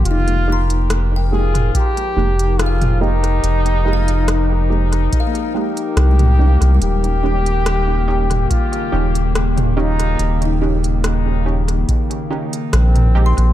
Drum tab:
HH |xx-xx--xxx-xxx-x|xx-xx--xxx-xxx-x|xx-xx--xxx-xxx-x|xx-xx--xxx-xxx-x|
SD |----r-------r---|----r-------r---|----r-------r---|----r-------r---|
T2 |-------o-----o--|-------------o--|-------o-----o--|-------------o--|
BD |--------o-------|--------o-------|--------o-------|--------o-------|